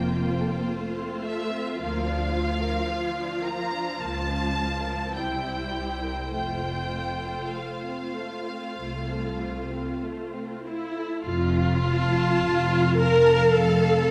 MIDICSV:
0, 0, Header, 1, 6, 480
1, 0, Start_track
1, 0, Key_signature, -1, "major"
1, 0, Tempo, 1102941
1, 781, Time_signature, 4, 2, 24, 8
1, 1741, Tempo, 1138520
1, 2221, Tempo, 1207243
1, 3181, Tempo, 1232033
1, 4621, Tempo, 1145038
1, 5819, End_track
2, 0, Start_track
2, 0, Title_t, "Violin section"
2, 0, Program_c, 0, 48
2, 0, Note_on_c, 0, 79, 81
2, 301, Note_off_c, 0, 79, 0
2, 544, Note_on_c, 0, 76, 70
2, 766, Note_off_c, 0, 76, 0
2, 785, Note_on_c, 0, 77, 74
2, 1500, Note_off_c, 0, 77, 0
2, 1500, Note_on_c, 0, 82, 78
2, 1742, Note_off_c, 0, 82, 0
2, 1742, Note_on_c, 0, 81, 82
2, 2221, Note_off_c, 0, 81, 0
2, 2222, Note_on_c, 0, 79, 69
2, 2689, Note_off_c, 0, 79, 0
2, 2694, Note_on_c, 0, 79, 70
2, 3169, Note_off_c, 0, 79, 0
2, 3178, Note_on_c, 0, 77, 53
2, 4139, Note_off_c, 0, 77, 0
2, 5593, Note_on_c, 0, 77, 86
2, 5809, Note_off_c, 0, 77, 0
2, 5819, End_track
3, 0, Start_track
3, 0, Title_t, "Violin section"
3, 0, Program_c, 1, 48
3, 0, Note_on_c, 1, 60, 49
3, 0, Note_on_c, 1, 72, 58
3, 58, Note_on_c, 1, 65, 52
3, 60, Note_off_c, 1, 60, 0
3, 178, Note_on_c, 1, 69, 51
3, 180, Note_off_c, 1, 65, 0
3, 299, Note_off_c, 1, 69, 0
3, 299, Note_on_c, 1, 65, 50
3, 419, Note_off_c, 1, 65, 0
3, 419, Note_on_c, 1, 60, 51
3, 540, Note_off_c, 1, 60, 0
3, 541, Note_on_c, 1, 57, 51
3, 661, Note_off_c, 1, 57, 0
3, 665, Note_on_c, 1, 60, 46
3, 762, Note_off_c, 1, 72, 0
3, 783, Note_off_c, 1, 60, 0
3, 783, Note_on_c, 1, 77, 57
3, 786, Note_on_c, 1, 58, 62
3, 895, Note_off_c, 1, 58, 0
3, 904, Note_on_c, 1, 62, 54
3, 1014, Note_on_c, 1, 65, 51
3, 1021, Note_off_c, 1, 62, 0
3, 1136, Note_off_c, 1, 65, 0
3, 1140, Note_on_c, 1, 70, 47
3, 1258, Note_off_c, 1, 70, 0
3, 1259, Note_on_c, 1, 65, 48
3, 1377, Note_on_c, 1, 62, 50
3, 1378, Note_off_c, 1, 65, 0
3, 1498, Note_off_c, 1, 62, 0
3, 1501, Note_on_c, 1, 58, 46
3, 1620, Note_off_c, 1, 58, 0
3, 1624, Note_on_c, 1, 62, 46
3, 1743, Note_off_c, 1, 62, 0
3, 1744, Note_on_c, 1, 58, 49
3, 1852, Note_off_c, 1, 58, 0
3, 1862, Note_on_c, 1, 61, 42
3, 1975, Note_on_c, 1, 65, 44
3, 1979, Note_off_c, 1, 61, 0
3, 2097, Note_off_c, 1, 65, 0
3, 2097, Note_on_c, 1, 70, 45
3, 2204, Note_off_c, 1, 77, 0
3, 2218, Note_on_c, 1, 60, 42
3, 2218, Note_on_c, 1, 72, 49
3, 2220, Note_off_c, 1, 70, 0
3, 2328, Note_off_c, 1, 60, 0
3, 2334, Note_on_c, 1, 64, 44
3, 2454, Note_off_c, 1, 64, 0
3, 2454, Note_on_c, 1, 67, 38
3, 2575, Note_off_c, 1, 67, 0
3, 2576, Note_on_c, 1, 70, 35
3, 2693, Note_on_c, 1, 57, 42
3, 2698, Note_off_c, 1, 70, 0
3, 2809, Note_off_c, 1, 57, 0
3, 2814, Note_on_c, 1, 60, 41
3, 2936, Note_on_c, 1, 65, 36
3, 2938, Note_off_c, 1, 60, 0
3, 3059, Note_off_c, 1, 65, 0
3, 3061, Note_on_c, 1, 69, 39
3, 3179, Note_on_c, 1, 65, 38
3, 3181, Note_off_c, 1, 69, 0
3, 3297, Note_on_c, 1, 60, 38
3, 3298, Note_off_c, 1, 65, 0
3, 3416, Note_on_c, 1, 57, 41
3, 3417, Note_off_c, 1, 60, 0
3, 3534, Note_on_c, 1, 60, 38
3, 3537, Note_off_c, 1, 57, 0
3, 3657, Note_off_c, 1, 60, 0
3, 3660, Note_on_c, 1, 65, 40
3, 3772, Note_off_c, 1, 65, 0
3, 3779, Note_on_c, 1, 69, 36
3, 3900, Note_off_c, 1, 69, 0
3, 3901, Note_on_c, 1, 65, 40
3, 4021, Note_off_c, 1, 65, 0
3, 4025, Note_on_c, 1, 60, 36
3, 4143, Note_off_c, 1, 60, 0
3, 4144, Note_on_c, 1, 57, 37
3, 4263, Note_off_c, 1, 57, 0
3, 4264, Note_on_c, 1, 60, 40
3, 4385, Note_off_c, 1, 60, 0
3, 4385, Note_on_c, 1, 65, 36
3, 4505, Note_off_c, 1, 65, 0
3, 4510, Note_on_c, 1, 69, 34
3, 4540, Note_off_c, 1, 72, 0
3, 4624, Note_off_c, 1, 69, 0
3, 4877, Note_on_c, 1, 77, 75
3, 4880, Note_on_c, 1, 81, 73
3, 5344, Note_off_c, 1, 77, 0
3, 5345, Note_off_c, 1, 81, 0
3, 5350, Note_on_c, 1, 81, 73
3, 5352, Note_on_c, 1, 77, 72
3, 5813, Note_off_c, 1, 81, 0
3, 5814, Note_off_c, 1, 77, 0
3, 5819, End_track
4, 0, Start_track
4, 0, Title_t, "Viola section"
4, 0, Program_c, 2, 48
4, 0, Note_on_c, 2, 58, 58
4, 0, Note_on_c, 2, 65, 59
4, 298, Note_on_c, 2, 57, 55
4, 300, Note_off_c, 2, 58, 0
4, 779, Note_off_c, 2, 57, 0
4, 785, Note_on_c, 2, 53, 52
4, 2205, Note_off_c, 2, 53, 0
4, 2214, Note_on_c, 2, 64, 45
4, 2216, Note_on_c, 2, 55, 46
4, 2221, Note_off_c, 2, 65, 0
4, 2685, Note_off_c, 2, 64, 0
4, 2688, Note_on_c, 2, 57, 40
4, 2689, Note_on_c, 2, 65, 41
4, 2695, Note_off_c, 2, 55, 0
4, 4363, Note_off_c, 2, 57, 0
4, 4379, Note_off_c, 2, 65, 0
4, 4385, Note_on_c, 2, 64, 66
4, 4606, Note_off_c, 2, 64, 0
4, 4621, Note_on_c, 2, 65, 95
4, 5334, Note_off_c, 2, 65, 0
4, 5350, Note_on_c, 2, 70, 109
4, 5583, Note_on_c, 2, 69, 106
4, 5587, Note_off_c, 2, 70, 0
4, 5819, Note_off_c, 2, 69, 0
4, 5819, End_track
5, 0, Start_track
5, 0, Title_t, "Cello section"
5, 0, Program_c, 3, 48
5, 0, Note_on_c, 3, 41, 65
5, 221, Note_off_c, 3, 41, 0
5, 784, Note_on_c, 3, 38, 66
5, 1179, Note_off_c, 3, 38, 0
5, 1739, Note_on_c, 3, 37, 61
5, 2138, Note_off_c, 3, 37, 0
5, 2222, Note_on_c, 3, 36, 50
5, 2617, Note_off_c, 3, 36, 0
5, 2697, Note_on_c, 3, 41, 45
5, 3101, Note_off_c, 3, 41, 0
5, 3659, Note_on_c, 3, 36, 50
5, 4061, Note_off_c, 3, 36, 0
5, 4621, Note_on_c, 3, 41, 84
5, 5054, Note_off_c, 3, 41, 0
5, 5115, Note_on_c, 3, 41, 81
5, 5532, Note_off_c, 3, 41, 0
5, 5589, Note_on_c, 3, 41, 92
5, 5819, Note_off_c, 3, 41, 0
5, 5819, End_track
6, 0, Start_track
6, 0, Title_t, "Double bass section"
6, 0, Program_c, 4, 48
6, 0, Note_on_c, 4, 29, 68
6, 223, Note_off_c, 4, 29, 0
6, 783, Note_on_c, 4, 38, 59
6, 1179, Note_off_c, 4, 38, 0
6, 1743, Note_on_c, 4, 37, 59
6, 2140, Note_off_c, 4, 37, 0
6, 2221, Note_on_c, 4, 36, 49
6, 2617, Note_off_c, 4, 36, 0
6, 2696, Note_on_c, 4, 29, 44
6, 3100, Note_off_c, 4, 29, 0
6, 3661, Note_on_c, 4, 36, 46
6, 4061, Note_off_c, 4, 36, 0
6, 4625, Note_on_c, 4, 29, 89
6, 5056, Note_off_c, 4, 29, 0
6, 5115, Note_on_c, 4, 29, 97
6, 5533, Note_off_c, 4, 29, 0
6, 5589, Note_on_c, 4, 29, 93
6, 5819, Note_off_c, 4, 29, 0
6, 5819, End_track
0, 0, End_of_file